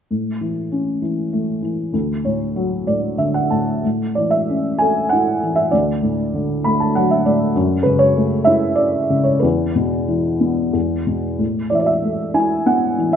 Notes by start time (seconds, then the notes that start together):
0.11 A2
0.41 E3
0.72 C#4
1.02 E3
1.33 A3
1.62 E3
1.93 D2
2.25 A2 C#5
2.56 F#3
2.87 A2 D5
3.18 D3 E5
3.34 F#5
3.50 A2 A5
3.84 A2
4.15 E3 D5
4.30 E5
4.50 C#4
4.78 A4 G#5
5.09 E4 F#5
5.43 E3
5.56 E5
5.71 D2 D5
6.02 A2
6.34 D3
6.64 A3 B5
6.80 A5
6.95 F#3 F#5
7.11 E5
7.26 A2 D5
7.56 F#2
7.83 C#3 B4
7.99 C#5
8.16 A3
8.44 E4 E5
8.75 D5
9.10 C#3
9.24 C#5
9.39 E2 B4
9.75 B2
10.08 E3
10.40 B3
10.73 E2
11.07 B2
11.39 A2
11.70 E3 D5
11.75 E5
11.79 D5
11.86 E5
12.03 A3
12.34 E4 G#5
12.66 B3 F#5
12.98 E3
13.13 E5